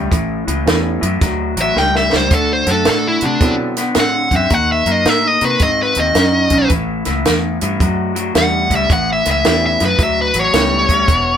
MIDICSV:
0, 0, Header, 1, 6, 480
1, 0, Start_track
1, 0, Tempo, 547945
1, 102, Time_signature, 4, 2, 24, 8
1, 9962, End_track
2, 0, Start_track
2, 0, Title_t, "Lead electric guitar"
2, 0, Program_c, 0, 29
2, 1414, Note_on_c, 0, 76, 74
2, 1563, Note_off_c, 0, 76, 0
2, 1563, Note_on_c, 0, 79, 77
2, 1711, Note_off_c, 0, 79, 0
2, 1723, Note_on_c, 0, 76, 93
2, 1871, Note_off_c, 0, 76, 0
2, 1896, Note_on_c, 0, 72, 99
2, 2038, Note_off_c, 0, 72, 0
2, 2055, Note_on_c, 0, 69, 86
2, 2198, Note_off_c, 0, 69, 0
2, 2216, Note_on_c, 0, 72, 73
2, 2359, Note_off_c, 0, 72, 0
2, 2378, Note_on_c, 0, 69, 91
2, 2520, Note_off_c, 0, 69, 0
2, 2540, Note_on_c, 0, 69, 98
2, 2681, Note_off_c, 0, 69, 0
2, 2699, Note_on_c, 0, 64, 81
2, 2841, Note_off_c, 0, 64, 0
2, 2857, Note_on_c, 0, 62, 90
2, 3101, Note_off_c, 0, 62, 0
2, 3501, Note_on_c, 0, 78, 104
2, 3798, Note_off_c, 0, 78, 0
2, 3820, Note_on_c, 0, 76, 94
2, 3975, Note_off_c, 0, 76, 0
2, 3975, Note_on_c, 0, 78, 90
2, 4120, Note_off_c, 0, 78, 0
2, 4135, Note_on_c, 0, 76, 76
2, 4306, Note_off_c, 0, 76, 0
2, 4306, Note_on_c, 0, 75, 81
2, 4459, Note_off_c, 0, 75, 0
2, 4459, Note_on_c, 0, 76, 87
2, 4620, Note_off_c, 0, 76, 0
2, 4620, Note_on_c, 0, 75, 88
2, 4763, Note_off_c, 0, 75, 0
2, 4776, Note_on_c, 0, 71, 88
2, 4921, Note_off_c, 0, 71, 0
2, 4925, Note_on_c, 0, 75, 80
2, 5076, Note_off_c, 0, 75, 0
2, 5103, Note_on_c, 0, 71, 86
2, 5245, Note_off_c, 0, 71, 0
2, 5250, Note_on_c, 0, 75, 90
2, 5864, Note_off_c, 0, 75, 0
2, 7342, Note_on_c, 0, 78, 104
2, 7639, Note_off_c, 0, 78, 0
2, 7669, Note_on_c, 0, 76, 102
2, 7807, Note_off_c, 0, 76, 0
2, 7820, Note_on_c, 0, 78, 91
2, 7962, Note_off_c, 0, 78, 0
2, 7994, Note_on_c, 0, 76, 82
2, 8129, Note_off_c, 0, 76, 0
2, 8157, Note_on_c, 0, 76, 83
2, 8287, Note_off_c, 0, 76, 0
2, 8297, Note_on_c, 0, 76, 89
2, 8440, Note_off_c, 0, 76, 0
2, 8464, Note_on_c, 0, 76, 82
2, 8603, Note_off_c, 0, 76, 0
2, 8632, Note_on_c, 0, 71, 89
2, 8767, Note_off_c, 0, 71, 0
2, 8786, Note_on_c, 0, 76, 87
2, 8924, Note_off_c, 0, 76, 0
2, 8950, Note_on_c, 0, 71, 97
2, 9085, Note_off_c, 0, 71, 0
2, 9116, Note_on_c, 0, 73, 79
2, 9962, Note_off_c, 0, 73, 0
2, 9962, End_track
3, 0, Start_track
3, 0, Title_t, "Grand piano"
3, 0, Program_c, 1, 0
3, 576, Note_on_c, 1, 55, 53
3, 581, Note_on_c, 1, 61, 53
3, 582, Note_on_c, 1, 64, 54
3, 583, Note_on_c, 1, 59, 57
3, 588, Note_on_c, 1, 69, 68
3, 861, Note_off_c, 1, 55, 0
3, 863, Note_off_c, 1, 61, 0
3, 864, Note_off_c, 1, 59, 0
3, 864, Note_off_c, 1, 64, 0
3, 867, Note_off_c, 1, 69, 0
3, 2988, Note_on_c, 1, 60, 57
3, 2989, Note_on_c, 1, 54, 63
3, 2991, Note_on_c, 1, 62, 54
3, 2994, Note_on_c, 1, 69, 72
3, 2995, Note_on_c, 1, 64, 53
3, 3270, Note_off_c, 1, 54, 0
3, 3270, Note_off_c, 1, 60, 0
3, 3272, Note_off_c, 1, 62, 0
3, 3273, Note_off_c, 1, 64, 0
3, 3273, Note_off_c, 1, 69, 0
3, 8277, Note_on_c, 1, 55, 62
3, 8280, Note_on_c, 1, 59, 57
3, 8280, Note_on_c, 1, 64, 48
3, 8282, Note_on_c, 1, 61, 53
3, 8282, Note_on_c, 1, 69, 60
3, 8553, Note_off_c, 1, 55, 0
3, 8555, Note_off_c, 1, 59, 0
3, 8555, Note_off_c, 1, 64, 0
3, 8556, Note_off_c, 1, 61, 0
3, 8556, Note_off_c, 1, 69, 0
3, 9221, Note_on_c, 1, 59, 55
3, 9222, Note_on_c, 1, 55, 63
3, 9225, Note_on_c, 1, 64, 48
3, 9226, Note_on_c, 1, 61, 49
3, 9228, Note_on_c, 1, 69, 62
3, 9504, Note_off_c, 1, 55, 0
3, 9504, Note_off_c, 1, 59, 0
3, 9506, Note_off_c, 1, 61, 0
3, 9506, Note_off_c, 1, 64, 0
3, 9507, Note_off_c, 1, 69, 0
3, 9962, End_track
4, 0, Start_track
4, 0, Title_t, "Clean electric guitar"
4, 0, Program_c, 2, 27
4, 94, Note_on_c, 2, 45, 76
4, 99, Note_on_c, 2, 52, 79
4, 379, Note_off_c, 2, 45, 0
4, 381, Note_off_c, 2, 52, 0
4, 416, Note_on_c, 2, 45, 75
4, 419, Note_on_c, 2, 52, 81
4, 568, Note_off_c, 2, 45, 0
4, 569, Note_off_c, 2, 52, 0
4, 590, Note_on_c, 2, 45, 83
4, 594, Note_on_c, 2, 52, 88
4, 868, Note_off_c, 2, 45, 0
4, 869, Note_off_c, 2, 52, 0
4, 887, Note_on_c, 2, 45, 77
4, 897, Note_on_c, 2, 52, 80
4, 1044, Note_off_c, 2, 45, 0
4, 1049, Note_off_c, 2, 52, 0
4, 1063, Note_on_c, 2, 45, 79
4, 1068, Note_on_c, 2, 54, 87
4, 1345, Note_off_c, 2, 45, 0
4, 1347, Note_off_c, 2, 54, 0
4, 1375, Note_on_c, 2, 45, 81
4, 1378, Note_on_c, 2, 54, 82
4, 1529, Note_off_c, 2, 45, 0
4, 1531, Note_off_c, 2, 54, 0
4, 1540, Note_on_c, 2, 45, 82
4, 1540, Note_on_c, 2, 55, 84
4, 1824, Note_off_c, 2, 45, 0
4, 1824, Note_off_c, 2, 55, 0
4, 1849, Note_on_c, 2, 45, 74
4, 1851, Note_on_c, 2, 55, 77
4, 2007, Note_off_c, 2, 45, 0
4, 2008, Note_off_c, 2, 55, 0
4, 2027, Note_on_c, 2, 50, 74
4, 2031, Note_on_c, 2, 57, 75
4, 2308, Note_off_c, 2, 50, 0
4, 2310, Note_off_c, 2, 57, 0
4, 2337, Note_on_c, 2, 50, 75
4, 2339, Note_on_c, 2, 57, 80
4, 2492, Note_off_c, 2, 50, 0
4, 2493, Note_off_c, 2, 57, 0
4, 2506, Note_on_c, 2, 50, 68
4, 2509, Note_on_c, 2, 57, 88
4, 2789, Note_off_c, 2, 50, 0
4, 2790, Note_off_c, 2, 57, 0
4, 2822, Note_on_c, 2, 50, 83
4, 2830, Note_on_c, 2, 57, 90
4, 2975, Note_off_c, 2, 50, 0
4, 2979, Note_off_c, 2, 57, 0
4, 2994, Note_on_c, 2, 50, 77
4, 2998, Note_on_c, 2, 59, 82
4, 3273, Note_off_c, 2, 50, 0
4, 3275, Note_off_c, 2, 59, 0
4, 3307, Note_on_c, 2, 50, 69
4, 3312, Note_on_c, 2, 59, 86
4, 3458, Note_off_c, 2, 50, 0
4, 3461, Note_off_c, 2, 59, 0
4, 3473, Note_on_c, 2, 50, 84
4, 3480, Note_on_c, 2, 60, 85
4, 3753, Note_off_c, 2, 50, 0
4, 3757, Note_off_c, 2, 60, 0
4, 3789, Note_on_c, 2, 50, 72
4, 3794, Note_on_c, 2, 60, 84
4, 3939, Note_off_c, 2, 50, 0
4, 3942, Note_off_c, 2, 60, 0
4, 3945, Note_on_c, 2, 51, 82
4, 3949, Note_on_c, 2, 58, 86
4, 4229, Note_off_c, 2, 51, 0
4, 4231, Note_off_c, 2, 58, 0
4, 4262, Note_on_c, 2, 51, 70
4, 4268, Note_on_c, 2, 58, 84
4, 4416, Note_off_c, 2, 51, 0
4, 4419, Note_off_c, 2, 58, 0
4, 4435, Note_on_c, 2, 51, 72
4, 4442, Note_on_c, 2, 58, 94
4, 4715, Note_off_c, 2, 51, 0
4, 4718, Note_off_c, 2, 58, 0
4, 4744, Note_on_c, 2, 51, 77
4, 4744, Note_on_c, 2, 58, 85
4, 4897, Note_off_c, 2, 51, 0
4, 4897, Note_off_c, 2, 58, 0
4, 4916, Note_on_c, 2, 51, 68
4, 4923, Note_on_c, 2, 60, 77
4, 5195, Note_off_c, 2, 51, 0
4, 5199, Note_off_c, 2, 60, 0
4, 5231, Note_on_c, 2, 60, 81
4, 5232, Note_on_c, 2, 51, 81
4, 5381, Note_off_c, 2, 51, 0
4, 5381, Note_off_c, 2, 60, 0
4, 5396, Note_on_c, 2, 51, 84
4, 5399, Note_on_c, 2, 61, 87
4, 5675, Note_off_c, 2, 51, 0
4, 5677, Note_off_c, 2, 61, 0
4, 5701, Note_on_c, 2, 51, 82
4, 5707, Note_on_c, 2, 61, 98
4, 5856, Note_off_c, 2, 51, 0
4, 5859, Note_off_c, 2, 61, 0
4, 5872, Note_on_c, 2, 45, 81
4, 5873, Note_on_c, 2, 52, 91
4, 6153, Note_off_c, 2, 45, 0
4, 6154, Note_off_c, 2, 52, 0
4, 6183, Note_on_c, 2, 45, 80
4, 6184, Note_on_c, 2, 52, 78
4, 6337, Note_off_c, 2, 45, 0
4, 6338, Note_off_c, 2, 52, 0
4, 6356, Note_on_c, 2, 45, 82
4, 6360, Note_on_c, 2, 52, 79
4, 6635, Note_off_c, 2, 45, 0
4, 6637, Note_off_c, 2, 52, 0
4, 6673, Note_on_c, 2, 45, 77
4, 6681, Note_on_c, 2, 52, 93
4, 6822, Note_off_c, 2, 45, 0
4, 6825, Note_off_c, 2, 52, 0
4, 6838, Note_on_c, 2, 45, 75
4, 6846, Note_on_c, 2, 54, 76
4, 7115, Note_off_c, 2, 45, 0
4, 7119, Note_off_c, 2, 54, 0
4, 7140, Note_on_c, 2, 45, 71
4, 7146, Note_on_c, 2, 54, 73
4, 7295, Note_off_c, 2, 45, 0
4, 7298, Note_off_c, 2, 54, 0
4, 7313, Note_on_c, 2, 55, 87
4, 7314, Note_on_c, 2, 45, 74
4, 7593, Note_off_c, 2, 45, 0
4, 7593, Note_off_c, 2, 55, 0
4, 7628, Note_on_c, 2, 45, 83
4, 7634, Note_on_c, 2, 55, 79
4, 7778, Note_off_c, 2, 45, 0
4, 7781, Note_off_c, 2, 55, 0
4, 7791, Note_on_c, 2, 45, 86
4, 7798, Note_on_c, 2, 52, 85
4, 8071, Note_off_c, 2, 45, 0
4, 8074, Note_off_c, 2, 52, 0
4, 8113, Note_on_c, 2, 45, 72
4, 8117, Note_on_c, 2, 52, 86
4, 8260, Note_off_c, 2, 45, 0
4, 8262, Note_off_c, 2, 52, 0
4, 8280, Note_on_c, 2, 45, 78
4, 8282, Note_on_c, 2, 52, 88
4, 8555, Note_off_c, 2, 45, 0
4, 8556, Note_off_c, 2, 52, 0
4, 8588, Note_on_c, 2, 45, 78
4, 8593, Note_on_c, 2, 52, 93
4, 8737, Note_off_c, 2, 45, 0
4, 8740, Note_off_c, 2, 52, 0
4, 8746, Note_on_c, 2, 45, 80
4, 8747, Note_on_c, 2, 54, 92
4, 9027, Note_off_c, 2, 45, 0
4, 9028, Note_off_c, 2, 54, 0
4, 9062, Note_on_c, 2, 45, 71
4, 9071, Note_on_c, 2, 54, 83
4, 9213, Note_off_c, 2, 45, 0
4, 9218, Note_off_c, 2, 54, 0
4, 9235, Note_on_c, 2, 45, 82
4, 9240, Note_on_c, 2, 55, 85
4, 9511, Note_off_c, 2, 45, 0
4, 9513, Note_off_c, 2, 55, 0
4, 9548, Note_on_c, 2, 45, 73
4, 9555, Note_on_c, 2, 55, 90
4, 9695, Note_off_c, 2, 45, 0
4, 9699, Note_off_c, 2, 55, 0
4, 9727, Note_on_c, 2, 40, 82
4, 9729, Note_on_c, 2, 47, 81
4, 9962, Note_off_c, 2, 40, 0
4, 9962, Note_off_c, 2, 47, 0
4, 9962, End_track
5, 0, Start_track
5, 0, Title_t, "Fingered electric bass"
5, 0, Program_c, 3, 33
5, 104, Note_on_c, 3, 33, 88
5, 384, Note_off_c, 3, 33, 0
5, 419, Note_on_c, 3, 37, 86
5, 570, Note_off_c, 3, 37, 0
5, 582, Note_on_c, 3, 40, 93
5, 864, Note_off_c, 3, 40, 0
5, 896, Note_on_c, 3, 42, 82
5, 1049, Note_off_c, 3, 42, 0
5, 1064, Note_on_c, 3, 38, 84
5, 1346, Note_off_c, 3, 38, 0
5, 1372, Note_on_c, 3, 33, 76
5, 1528, Note_off_c, 3, 33, 0
5, 1544, Note_on_c, 3, 37, 81
5, 1826, Note_off_c, 3, 37, 0
5, 1868, Note_on_c, 3, 37, 81
5, 2017, Note_off_c, 3, 37, 0
5, 2029, Note_on_c, 3, 38, 89
5, 2310, Note_off_c, 3, 38, 0
5, 2337, Note_on_c, 3, 42, 76
5, 2492, Note_off_c, 3, 42, 0
5, 2518, Note_on_c, 3, 45, 81
5, 2795, Note_off_c, 3, 45, 0
5, 2821, Note_on_c, 3, 48, 84
5, 2974, Note_off_c, 3, 48, 0
5, 2988, Note_on_c, 3, 47, 88
5, 3436, Note_off_c, 3, 47, 0
5, 3471, Note_on_c, 3, 45, 89
5, 3752, Note_off_c, 3, 45, 0
5, 3781, Note_on_c, 3, 42, 84
5, 3936, Note_off_c, 3, 42, 0
5, 3952, Note_on_c, 3, 39, 94
5, 4233, Note_off_c, 3, 39, 0
5, 4253, Note_on_c, 3, 42, 76
5, 4411, Note_off_c, 3, 42, 0
5, 4426, Note_on_c, 3, 45, 97
5, 4710, Note_off_c, 3, 45, 0
5, 4744, Note_on_c, 3, 48, 80
5, 4897, Note_off_c, 3, 48, 0
5, 4910, Note_on_c, 3, 44, 80
5, 5192, Note_off_c, 3, 44, 0
5, 5224, Note_on_c, 3, 39, 93
5, 5378, Note_off_c, 3, 39, 0
5, 5388, Note_on_c, 3, 42, 99
5, 5672, Note_off_c, 3, 42, 0
5, 5703, Note_on_c, 3, 35, 88
5, 5857, Note_off_c, 3, 35, 0
5, 5873, Note_on_c, 3, 33, 100
5, 6155, Note_off_c, 3, 33, 0
5, 6191, Note_on_c, 3, 37, 95
5, 6342, Note_off_c, 3, 37, 0
5, 6364, Note_on_c, 3, 40, 102
5, 6640, Note_off_c, 3, 40, 0
5, 6676, Note_on_c, 3, 43, 91
5, 6824, Note_off_c, 3, 43, 0
5, 6839, Note_on_c, 3, 42, 82
5, 7281, Note_off_c, 3, 42, 0
5, 7318, Note_on_c, 3, 40, 95
5, 7596, Note_off_c, 3, 40, 0
5, 7626, Note_on_c, 3, 37, 80
5, 7778, Note_off_c, 3, 37, 0
5, 7796, Note_on_c, 3, 33, 97
5, 8074, Note_off_c, 3, 33, 0
5, 8116, Note_on_c, 3, 37, 82
5, 8262, Note_off_c, 3, 37, 0
5, 8275, Note_on_c, 3, 40, 87
5, 8553, Note_off_c, 3, 40, 0
5, 8592, Note_on_c, 3, 42, 88
5, 8740, Note_off_c, 3, 42, 0
5, 8749, Note_on_c, 3, 38, 82
5, 9029, Note_off_c, 3, 38, 0
5, 9064, Note_on_c, 3, 33, 80
5, 9214, Note_off_c, 3, 33, 0
5, 9231, Note_on_c, 3, 37, 98
5, 9509, Note_off_c, 3, 37, 0
5, 9543, Note_on_c, 3, 38, 83
5, 9693, Note_off_c, 3, 38, 0
5, 9707, Note_on_c, 3, 28, 87
5, 9962, Note_off_c, 3, 28, 0
5, 9962, End_track
6, 0, Start_track
6, 0, Title_t, "Drums"
6, 102, Note_on_c, 9, 36, 95
6, 106, Note_on_c, 9, 42, 80
6, 189, Note_off_c, 9, 36, 0
6, 194, Note_off_c, 9, 42, 0
6, 419, Note_on_c, 9, 42, 62
6, 507, Note_off_c, 9, 42, 0
6, 589, Note_on_c, 9, 42, 83
6, 593, Note_on_c, 9, 38, 114
6, 676, Note_off_c, 9, 42, 0
6, 681, Note_off_c, 9, 38, 0
6, 899, Note_on_c, 9, 42, 64
6, 986, Note_off_c, 9, 42, 0
6, 1064, Note_on_c, 9, 36, 104
6, 1064, Note_on_c, 9, 42, 82
6, 1068, Note_on_c, 9, 38, 35
6, 1152, Note_off_c, 9, 36, 0
6, 1152, Note_off_c, 9, 42, 0
6, 1156, Note_off_c, 9, 38, 0
6, 1374, Note_on_c, 9, 42, 66
6, 1462, Note_off_c, 9, 42, 0
6, 1549, Note_on_c, 9, 38, 59
6, 1636, Note_off_c, 9, 38, 0
6, 1711, Note_on_c, 9, 38, 59
6, 1799, Note_off_c, 9, 38, 0
6, 1863, Note_on_c, 9, 38, 98
6, 1951, Note_off_c, 9, 38, 0
6, 2021, Note_on_c, 9, 42, 87
6, 2024, Note_on_c, 9, 36, 118
6, 2109, Note_off_c, 9, 42, 0
6, 2111, Note_off_c, 9, 36, 0
6, 2335, Note_on_c, 9, 42, 62
6, 2339, Note_on_c, 9, 38, 26
6, 2422, Note_off_c, 9, 42, 0
6, 2427, Note_off_c, 9, 38, 0
6, 2497, Note_on_c, 9, 42, 85
6, 2501, Note_on_c, 9, 38, 113
6, 2585, Note_off_c, 9, 42, 0
6, 2589, Note_off_c, 9, 38, 0
6, 2810, Note_on_c, 9, 42, 58
6, 2897, Note_off_c, 9, 42, 0
6, 2983, Note_on_c, 9, 42, 88
6, 2985, Note_on_c, 9, 36, 113
6, 2987, Note_on_c, 9, 38, 32
6, 3070, Note_off_c, 9, 42, 0
6, 3072, Note_off_c, 9, 36, 0
6, 3075, Note_off_c, 9, 38, 0
6, 3298, Note_on_c, 9, 42, 63
6, 3303, Note_on_c, 9, 38, 32
6, 3386, Note_off_c, 9, 42, 0
6, 3390, Note_off_c, 9, 38, 0
6, 3457, Note_on_c, 9, 42, 89
6, 3461, Note_on_c, 9, 38, 114
6, 3544, Note_off_c, 9, 42, 0
6, 3549, Note_off_c, 9, 38, 0
6, 3777, Note_on_c, 9, 36, 78
6, 3778, Note_on_c, 9, 42, 58
6, 3865, Note_off_c, 9, 36, 0
6, 3866, Note_off_c, 9, 42, 0
6, 3943, Note_on_c, 9, 42, 82
6, 3948, Note_on_c, 9, 36, 96
6, 4031, Note_off_c, 9, 42, 0
6, 4036, Note_off_c, 9, 36, 0
6, 4256, Note_on_c, 9, 42, 54
6, 4344, Note_off_c, 9, 42, 0
6, 4427, Note_on_c, 9, 42, 81
6, 4432, Note_on_c, 9, 38, 113
6, 4515, Note_off_c, 9, 42, 0
6, 4519, Note_off_c, 9, 38, 0
6, 4739, Note_on_c, 9, 42, 53
6, 4827, Note_off_c, 9, 42, 0
6, 4900, Note_on_c, 9, 42, 73
6, 4905, Note_on_c, 9, 38, 33
6, 4907, Note_on_c, 9, 36, 102
6, 4988, Note_off_c, 9, 42, 0
6, 4992, Note_off_c, 9, 38, 0
6, 4994, Note_off_c, 9, 36, 0
6, 5210, Note_on_c, 9, 42, 65
6, 5298, Note_off_c, 9, 42, 0
6, 5386, Note_on_c, 9, 42, 96
6, 5390, Note_on_c, 9, 38, 108
6, 5473, Note_off_c, 9, 42, 0
6, 5478, Note_off_c, 9, 38, 0
6, 5693, Note_on_c, 9, 42, 66
6, 5700, Note_on_c, 9, 36, 72
6, 5781, Note_off_c, 9, 42, 0
6, 5788, Note_off_c, 9, 36, 0
6, 5865, Note_on_c, 9, 42, 83
6, 5871, Note_on_c, 9, 36, 97
6, 5953, Note_off_c, 9, 42, 0
6, 5958, Note_off_c, 9, 36, 0
6, 6177, Note_on_c, 9, 42, 54
6, 6181, Note_on_c, 9, 38, 28
6, 6264, Note_off_c, 9, 42, 0
6, 6269, Note_off_c, 9, 38, 0
6, 6354, Note_on_c, 9, 42, 84
6, 6358, Note_on_c, 9, 38, 117
6, 6442, Note_off_c, 9, 42, 0
6, 6446, Note_off_c, 9, 38, 0
6, 6668, Note_on_c, 9, 42, 58
6, 6755, Note_off_c, 9, 42, 0
6, 6836, Note_on_c, 9, 36, 112
6, 6839, Note_on_c, 9, 42, 81
6, 6924, Note_off_c, 9, 36, 0
6, 6926, Note_off_c, 9, 42, 0
6, 7149, Note_on_c, 9, 42, 61
6, 7236, Note_off_c, 9, 42, 0
6, 7314, Note_on_c, 9, 42, 93
6, 7319, Note_on_c, 9, 38, 109
6, 7402, Note_off_c, 9, 42, 0
6, 7406, Note_off_c, 9, 38, 0
6, 7625, Note_on_c, 9, 36, 69
6, 7627, Note_on_c, 9, 42, 60
6, 7713, Note_off_c, 9, 36, 0
6, 7714, Note_off_c, 9, 42, 0
6, 7795, Note_on_c, 9, 36, 104
6, 7797, Note_on_c, 9, 42, 79
6, 7883, Note_off_c, 9, 36, 0
6, 7885, Note_off_c, 9, 42, 0
6, 8106, Note_on_c, 9, 42, 59
6, 8111, Note_on_c, 9, 38, 31
6, 8194, Note_off_c, 9, 42, 0
6, 8198, Note_off_c, 9, 38, 0
6, 8275, Note_on_c, 9, 42, 73
6, 8279, Note_on_c, 9, 38, 109
6, 8362, Note_off_c, 9, 42, 0
6, 8367, Note_off_c, 9, 38, 0
6, 8585, Note_on_c, 9, 42, 52
6, 8590, Note_on_c, 9, 38, 30
6, 8673, Note_off_c, 9, 42, 0
6, 8677, Note_off_c, 9, 38, 0
6, 8747, Note_on_c, 9, 42, 85
6, 8749, Note_on_c, 9, 36, 119
6, 8835, Note_off_c, 9, 42, 0
6, 8837, Note_off_c, 9, 36, 0
6, 9055, Note_on_c, 9, 42, 59
6, 9143, Note_off_c, 9, 42, 0
6, 9229, Note_on_c, 9, 42, 84
6, 9233, Note_on_c, 9, 38, 123
6, 9316, Note_off_c, 9, 42, 0
6, 9321, Note_off_c, 9, 38, 0
6, 9539, Note_on_c, 9, 36, 84
6, 9543, Note_on_c, 9, 42, 60
6, 9626, Note_off_c, 9, 36, 0
6, 9630, Note_off_c, 9, 42, 0
6, 9707, Note_on_c, 9, 36, 119
6, 9708, Note_on_c, 9, 42, 79
6, 9795, Note_off_c, 9, 36, 0
6, 9795, Note_off_c, 9, 42, 0
6, 9962, End_track
0, 0, End_of_file